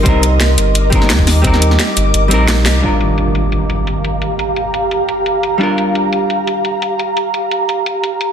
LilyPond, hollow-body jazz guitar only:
\new Staff \with { instrumentName = "Hollow-body jazz guitar" } { \time 4/4 \key g \minor \tempo 4 = 173 <g c' ees' bes'>2~ <g c' ees' bes'>8 <g c' ees' bes'>4. | <g c' ees' bes'>2~ <g c' ees' bes'>8 <g c' ees' bes'>4. | <g d' f' bes'>1~ | <g d' f' bes'>1 |
<g d' f' bes'>1~ | <g d' f' bes'>1 | }